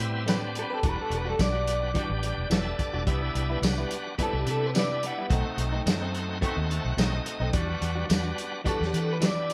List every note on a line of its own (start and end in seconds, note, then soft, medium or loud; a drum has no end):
0.00 0.63 A2 medium
0.00 0.24 G3 loud
0.00 0.24 B3 medium
0.00 0.24 C4 medium
0.00 0.42 C4 medium
0.00 0.24 E4 loud
0.00 0.43 G4 medium
0.00 muted clean electric guitar stroke medium
0.00 closed hi-hat medium
0.26 0.80 G3 medium
0.26 0.42 A3 medium
0.26 0.80 B3 medium
0.26 0.80 C4 medium
0.26 0.42 C4 medium
0.26 0.80 D4 medium
0.26 0.42 G4 medium
0.26 0.41 B4 medium
0.26 snare loud
0.26 closed hi-hat medium
0.26 tambourine medium
0.42 muted clean electric guitar stroke soft
0.55 muted clean electric guitar stroke soft
0.55 closed hi-hat medium
0.59 0.72 B4 medium
0.70 0.84 C4 soft
0.70 0.84 G4 soft
0.70 0.85 A4 medium
0.70 0.83 B4 medium
0.82 0.95 E1 medium
0.82 0.98 E3 medium
0.82 1.39 G3 medium
0.82 0.97 G3 medium
0.82 1.36 G3 medium
0.82 1.36 B3 medium
0.82 1.39 D4 medium
0.82 1.36 D4 medium
0.82 0.97 D4 medium
0.82 1.39 F#4 medium
0.82 1.36 F#4 medium
0.82 0.96 F#4 medium
0.82 0.99 B4 medium
0.82 kick loud
0.82 closed hi-hat medium
0.97 muted clean electric guitar stroke soft
1.01 1.12 A4 medium
1.10 1.32 E1 medium
1.10 muted clean electric guitar stroke soft
1.10 closed hi-hat medium
1.15 1.28 B4 medium
1.25 1.38 G3 soft
1.25 1.39 D4 medium
1.25 1.39 F#4 medium
1.29 1.40 A4 medium
1.39 1.93 B1 loud
1.39 1.91 G3 medium
1.39 1.92 B3 medium
1.39 1.92 D4 medium
1.39 1.92 F#4 medium
1.39 3.04 D5 medium
1.39 muted clean electric guitar stroke soft
1.39 kick medium
1.39 snare loud
1.39 closed hi-hat medium
1.39 tambourine loud
1.53 1.71 G3 soft
1.53 1.70 D4 medium
1.53 1.70 F#4 medium
1.68 closed hi-hat medium
1.82 muted clean electric guitar stroke soft
1.94 2.10 E3 medium
1.94 2.47 G3 medium
1.94 2.10 G3 medium
1.94 2.48 B3 medium
1.94 2.10 D4 medium
1.94 2.48 D4 medium
1.94 2.10 D4 medium
1.94 2.11 F#4 medium
1.94 2.09 F#4 medium
1.94 2.48 G4 medium
1.94 kick medium
1.94 closed hi-hat medium
2.10 2.31 A1 medium
2.10 muted clean electric guitar stroke soft
2.22 2.66 G3 medium
2.22 2.66 D4 medium
2.22 2.49 G5 medium
2.22 muted clean electric guitar stroke soft
2.22 closed hi-hat medium
2.38 2.48 E1 medium
2.50 2.72 E1 medium
2.50 2.66 E3 medium
2.50 3.03 G3 medium
2.50 2.65 G3 medium
2.50 3.03 B3 medium
2.50 3.03 D4 medium
2.50 2.65 D4 medium
2.50 2.64 F#4 medium
2.50 3.03 A4 medium
2.50 2.77 E5 medium
2.50 snare loud
2.50 closed hi-hat medium
2.50 tambourine loud
2.65 muted clean electric guitar stroke soft
2.79 3.05 D5 medium
2.79 muted clean electric guitar stroke soft
2.79 kick medium
2.79 closed hi-hat medium
2.93 3.04 E1 medium
2.93 3.06 G3 soft
2.93 3.07 D4 medium
2.93 3.07 F#4 medium
3.06 3.28 C2 medium
3.06 3.21 C3 medium
3.06 3.59 G3 medium
3.06 3.22 G3 medium
3.06 3.59 B3 medium
3.06 3.63 B3 medium
3.06 3.22 B3 medium
3.06 3.59 D4 medium
3.06 3.59 E4 medium
3.06 3.21 E4 medium
3.06 3.64 E4 medium
3.06 kick loud
3.06 closed hi-hat medium
3.22 muted clean electric guitar stroke soft
3.35 3.56 C2 medium
3.35 muted clean electric guitar stroke soft
3.35 closed hi-hat medium
3.50 3.63 G3 soft
3.50 3.63 B3 medium
3.50 3.63 E4 medium
3.62 3.83 C2 medium
3.62 4.15 G3 medium
3.62 4.15 B3 medium
3.62 4.15 D4 medium
3.62 4.15 F#4 medium
3.62 muted clean electric guitar stroke soft
3.62 snare loud
3.62 closed hi-hat medium
3.62 tambourine loud
3.78 3.95 G3 medium
3.78 3.95 B3 medium
3.78 3.94 E4 medium
3.91 closed hi-hat medium
4.07 muted clean electric guitar stroke soft
4.18 4.34 C3 medium
4.18 4.71 G3 medium
4.18 4.34 G3 medium
4.18 4.71 B3 medium
4.18 4.34 B3 medium
4.18 4.33 B3 medium
4.18 4.34 C4 medium
4.18 4.71 D4 medium
4.18 4.71 E4 medium
4.18 4.34 E4 medium
4.18 4.33 E4 medium
4.18 kick medium
4.18 closed hi-hat medium
4.23 4.35 A4 medium
4.33 4.43 C2 medium
4.33 muted clean electric guitar stroke soft
4.37 4.48 G4 medium
4.46 5.10 C3 medium
4.46 4.90 B3 medium
4.46 4.90 E4 medium
4.46 4.66 A4 medium
4.46 muted clean electric guitar stroke soft
4.46 closed hi-hat medium
4.66 4.77 B4 medium
4.74 4.89 C3 medium
4.74 5.26 G3 medium
4.74 4.90 G3 medium
4.74 5.26 B3 medium
4.74 4.90 B3 medium
4.74 5.27 D4 medium
4.74 5.26 E4 medium
4.74 4.89 E4 medium
4.74 snare loud
4.74 closed hi-hat medium
4.74 tambourine loud
4.79 5.04 D5 medium
4.90 muted clean electric guitar stroke soft
5.03 5.59 F#5 medium
5.03 muted clean electric guitar stroke soft
5.03 closed hi-hat medium
5.18 5.31 G3 soft
5.18 5.31 B3 soft
5.18 5.31 E4 medium
5.30 5.42 B1 medium
5.30 5.45 B2 medium
5.30 5.86 A3 medium
5.30 5.82 A3 medium
5.30 5.46 A3 medium
5.30 5.86 C4 medium
5.30 5.82 C4 medium
5.30 5.46 C4 medium
5.30 5.82 D#4 medium
5.30 5.86 D#4 medium
5.30 5.45 D#4 loud
5.30 5.82 F#4 medium
5.30 kick loud
5.30 closed hi-hat medium
5.46 muted clean electric guitar stroke soft
5.57 5.79 B1 medium
5.57 muted clean electric guitar stroke soft
5.57 closed hi-hat medium
5.72 5.85 A3 soft
5.72 5.86 C4 medium
5.72 5.86 D#4 medium
5.86 6.40 F#2 loud
5.86 6.38 A3 medium
5.86 6.38 C4 medium
5.86 6.38 D#4 medium
5.86 6.39 F#4 medium
5.86 muted clean electric guitar stroke soft
5.86 snare loud
5.86 closed hi-hat medium
5.86 tambourine loud
6.01 6.18 A3 medium
6.01 6.18 C4 medium
6.01 6.17 D#4 medium
6.15 closed hi-hat medium
6.28 muted clean electric guitar stroke soft
6.41 6.57 B2 medium
6.41 6.94 A3 loud
6.41 6.57 A3 medium
6.41 6.94 C4 medium
6.41 6.57 C4 medium
6.41 6.94 D#4 medium
6.41 6.56 D#4 medium
6.41 6.94 F#4 loud
6.41 6.57 F#4 loud
6.41 kick medium
6.41 closed hi-hat medium
6.57 6.78 D#2 medium
6.57 muted clean electric guitar stroke soft
6.70 7.13 A3 medium
6.70 7.13 C4 medium
6.70 7.13 F#4 medium
6.70 6.84 A5 medium
6.70 muted clean electric guitar stroke soft
6.70 closed hi-hat medium
6.85 6.94 B1 medium
6.85 6.97 F#5 medium
6.97 7.19 B1 medium
6.97 7.13 B2 medium
6.97 7.50 A3 medium
6.97 7.13 A3 medium
6.97 7.50 C4 medium
6.97 7.13 C4 medium
6.97 7.50 D#4 medium
6.97 7.12 D#4 medium
6.97 7.50 F#4 loud
6.97 7.24 D#5 medium
6.97 snare loud
6.97 closed hi-hat medium
6.97 tambourine loud
7.13 muted clean electric guitar stroke soft
7.25 7.52 D#5 medium
7.25 muted clean electric guitar stroke soft
7.25 closed hi-hat medium
7.40 7.50 B1 medium
7.40 7.53 A3 soft
7.40 7.53 C4 medium
7.40 7.53 D#4 medium
7.53 7.75 E2 medium
7.53 7.68 E3 medium
7.53 8.05 G3 medium
7.53 7.68 G3 medium
7.53 8.10 G3 medium
7.53 8.06 B3 medium
7.53 8.06 D4 medium
7.53 7.68 D4 loud
7.53 8.10 D4 medium
7.53 8.06 F#4 medium
7.53 7.67 F#4 medium
7.53 8.10 F#4 loud
7.53 kick loud
7.53 closed hi-hat medium
7.68 muted clean electric guitar stroke medium
7.81 8.03 E2 medium
7.81 muted clean electric guitar stroke soft
7.81 closed hi-hat medium
7.95 8.08 G3 soft
7.95 8.08 D4 medium
7.95 8.09 F#4 medium
8.08 8.31 E2 medium
8.08 8.62 G3 medium
8.08 8.62 B3 medium
8.08 8.62 D4 medium
8.08 8.62 F#4 loud
8.08 muted clean electric guitar stroke soft
8.08 snare loud
8.08 closed hi-hat medium
8.08 tambourine loud
8.23 8.41 G3 soft
8.23 8.40 D4 medium
8.23 8.40 F#4 medium
8.38 closed hi-hat medium
8.52 muted clean electric guitar stroke soft
8.64 8.80 E3 medium
8.64 8.80 G3 medium
8.64 9.18 G3 medium
8.64 9.18 B3 medium
8.64 8.80 D4 medium
8.64 9.18 D4 medium
8.64 8.80 D4 medium
8.64 8.80 F#4 medium
8.64 9.18 F#4 medium
8.64 8.79 F#4 medium
8.64 kick medium
8.64 closed hi-hat medium
8.69 8.85 A4 medium
8.80 8.90 E2 medium
8.80 muted clean electric guitar stroke soft
8.80 snare soft
8.85 8.97 G4 medium
8.93 9.54 E3 medium
8.93 9.36 G3 medium
8.93 9.36 D4 medium
8.93 9.37 F#4 medium
8.93 muted clean electric guitar stroke soft
8.93 closed hi-hat medium
8.97 9.10 A4 medium
9.13 9.23 B4 medium
9.21 9.36 E3 medium
9.21 9.54 G3 medium
9.21 9.36 G3 medium
9.21 9.54 B3 medium
9.21 9.54 D4 medium
9.21 9.35 D4 medium
9.21 9.54 E4 medium
9.21 9.34 F#4 medium
9.21 snare medium
9.21 closed hi-hat medium
9.21 tambourine loud
9.26 9.50 D5 medium
9.36 muted clean electric guitar stroke soft
9.49 muted clean electric guitar stroke soft
9.49 closed hi-hat medium